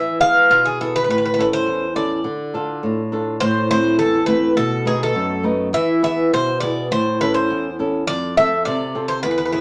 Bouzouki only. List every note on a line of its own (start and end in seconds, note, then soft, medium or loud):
0.00 0.20 E5 medium
0.21 0.51 F5 loud
0.51 0.65 F4 medium
0.65 0.80 G#4 medium
0.81 0.94 A4 medium
0.96 1.02 B4 medium
1.04 1.09 B4 medium
1.10 1.17 B4 medium
1.18 1.24 B4 medium
1.25 1.32 B4 medium
1.34 1.39 B4 medium
1.40 1.47 B4 medium
1.53 1.93 C5 medium
1.96 3.08 D5 medium
3.40 3.68 C5 loud
3.71 3.98 C5 loud
3.99 4.26 A4 medium
4.26 4.54 B4 medium
4.57 4.87 A4 medium
4.87 5.01 G#4 medium
5.03 5.43 A4 medium
5.74 6.01 E5 loud
6.04 6.33 E5 medium
6.34 6.60 C5 medium
6.60 6.88 D5 medium
6.92 7.18 C5 medium
7.21 7.34 B4 medium
7.34 7.75 C5 medium
8.07 8.35 D5 loud
8.37 8.65 E5 loud
8.65 9.08 D5 medium
9.08 9.22 C5 medium
9.23 9.30 B4 medium
9.31 9.37 B4 medium
9.38 9.44 B4 medium
9.45 9.51 B4 soft
9.52 9.59 B4 medium